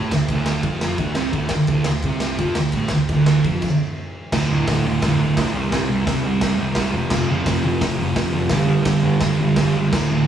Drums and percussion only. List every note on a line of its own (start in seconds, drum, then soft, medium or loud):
0.11 kick loud
0.11 snare loud
0.11 ride loud
0.29 kick loud
0.29 ride medium
0.46 snare loud
0.46 ride loud
0.63 kick loud
0.63 ride medium
0.81 snare loud
0.81 ride medium
0.98 kick loud
0.98 ride medium
1.15 snare loud
1.15 ride medium
1.33 kick loud
1.33 ride medium
1.49 kick loud
1.49 snare loud
1.49 ride loud
1.67 kick loud
1.67 ride medium
1.84 snare loud
1.84 ride loud
2.02 kick loud
2.02 ride medium
2.20 snare loud
2.20 ride loud
2.38 kick loud
2.38 ride medium
2.55 snare loud
2.55 ride medium
2.72 kick loud
2.72 ride medium
2.88 kick loud
2.88 snare loud
2.88 ride medium
3.09 kick loud
3.09 ride medium
3.26 snare loud
3.26 ride medium
3.44 kick loud
3.44 ride medium
3.62 kick loud
3.62 crash loud
4.32 kick loud
4.32 snare loud
4.32 crash loud
4.68 kick loud
4.68 snare loud
4.68 open hi-hat medium
5.02 kick loud
5.02 snare loud
5.02 open hi-hat medium
5.37 kick loud
5.37 snare loud
5.37 open hi-hat medium
5.72 kick loud
5.72 snare loud
5.72 open hi-hat medium
6.07 kick loud
6.07 snare loud
6.07 open hi-hat medium
6.41 kick loud
6.41 snare loud
6.41 open hi-hat medium
6.75 kick loud
6.75 snare loud
6.75 open hi-hat medium
7.10 kick loud
7.10 snare loud
7.10 crash loud
7.46 kick loud
7.46 snare loud
7.46 open hi-hat medium
7.81 kick loud
7.81 snare loud
7.81 open hi-hat medium
8.16 kick loud
8.16 snare loud
8.16 open hi-hat medium
8.50 kick loud
8.50 snare loud
8.50 open hi-hat medium
8.85 kick loud
8.85 snare loud
8.85 open hi-hat medium
9.21 kick loud
9.21 snare loud
9.21 open hi-hat medium
9.56 kick loud
9.56 snare loud
9.56 open hi-hat medium
9.93 kick loud
9.93 snare loud
9.93 crash loud